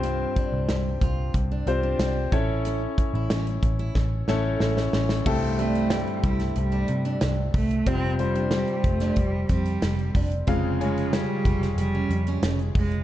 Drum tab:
CC |----------------|----------------|x---------------|----------------|
HH |x-x-x-x-x-x-x-x-|x-x-xxx---------|--xxxxxxxxxxx-ox|x-xxxxxxx-xxxxox|
SD |----o-------o---|----o---o-o-oooo|----o--o----o---|----o--o----o---|
BD |--o---o-o-----o-|--o---o-o-------|o-----o-------o-|o-----o-o-o---o-|

CC |----------------|
HH |x-xxx-xxx-xxxxox|
SD |----o--o----o---|
BD |o-----o-------o-|